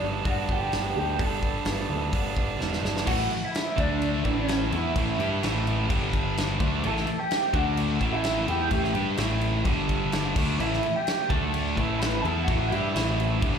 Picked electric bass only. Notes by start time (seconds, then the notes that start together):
0.02 G1
0.26 G2
0.49 G1
0.73 G1
0.96 D2
1.19 G1
1.65 G1
1.89 D2
2.13 G1
2.37 G1
2.59 E1
2.82 G1
3.08 A1
3.30 muted picked electric bass stroke
3.78 D2
4.25 A1
4.72 E2
4.96 A1
5.19 G2
5.42 A1
5.90 G1
6.61 D2
6.84 A1
7.08 muted picked electric bass stroke
7.53 D2
8.01 A1
8.48 E2
8.71 A1
8.94 G2
9.17 A1
9.66 G1
10.36 D2
10.59 A1
10.83 muted picked electric bass stroke
11.30 D2
11.77 A1
12.24 E2
12.49 A1
12.70 G2
12.95 A1
13.42 G1